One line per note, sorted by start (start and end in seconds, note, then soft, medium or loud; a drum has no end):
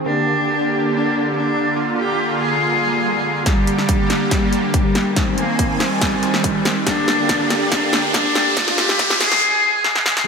0.06 3.43 D3 medium
0.06 1.74 A#3 medium
0.06 0.83 D4 medium
0.06 1.74 G4 medium
0.91 1.26 D4 medium
1.33 1.89 D4 medium
1.76 3.45 A#3 medium
1.76 3.44 F4 medium
1.97 2.32 G4 medium
2.40 3.38 G#4 medium
2.61 swell medium
3.46 5.15 D3 medium
3.46 4.23 G3 loud
3.46 5.15 A#3 medium
3.46 5.15 G4 medium
3.46 kick medium
3.46 snare soft
3.46 closed hi-hat medium
3.46 riser medium
3.67 closed hi-hat medium
3.78 snare soft
3.89 kick medium
3.89 closed hi-hat medium
4.10 snare medium
4.10 closed hi-hat medium
4.31 4.66 G3 medium
4.31 kick medium
4.31 snare medium
4.31 closed hi-hat medium
4.53 closed hi-hat soft
4.74 5.30 G3 medium
4.74 kick medium
4.74 closed hi-hat medium
4.95 snare medium
4.95 closed hi-hat medium
5.16 6.85 D#3 medium
5.16 6.85 C4 medium
5.16 6.85 G#5 loud
5.16 kick medium
5.16 snare medium
5.16 closed hi-hat medium
5.38 5.72 A#3 medium
5.38 closed hi-hat medium
5.59 kick medium
5.59 closed hi-hat medium
5.80 6.78 G3 medium
5.80 snare medium
5.80 closed hi-hat medium
6.01 kick medium
6.01 snare medium
6.01 closed hi-hat medium
6.23 closed hi-hat soft
6.34 snare medium
6.44 kick loud
6.44 closed hi-hat medium
6.65 snare medium
6.65 closed hi-hat medium
6.87 9.39 D3 medium
6.87 9.39 A#3 medium
6.87 7.64 D4 loud
6.87 8.55 G4 medium
6.87 kick loud
6.87 snare medium
6.87 closed hi-hat medium
7.08 snare medium
7.08 closed hi-hat medium
7.29 kick medium
7.29 snare medium
7.29 closed hi-hat medium
7.50 snare medium
7.50 closed hi-hat medium
7.72 8.06 D4 medium
7.72 kick loud
7.72 snare medium
7.72 closed hi-hat medium
7.93 snare medium
7.93 closed hi-hat medium
8.14 8.70 D4 medium
8.14 kick medium
8.14 snare medium
8.14 closed hi-hat medium
8.35 snare medium
8.35 closed hi-hat medium
8.57 9.41 F4 medium
8.57 kick loud
8.57 snare loud
8.57 closed hi-hat medium
8.68 snare medium
8.78 9.13 G4 medium
8.78 snare loud
8.78 closed hi-hat medium
8.89 snare medium
8.99 kick medium
8.99 snare medium
8.99 closed hi-hat medium
9.10 snare medium
9.21 10.19 G#4 medium
9.21 snare loud
9.21 closed hi-hat medium
9.32 snare medium
9.84 snare medium
9.95 snare medium
10.06 snare medium
10.17 snare medium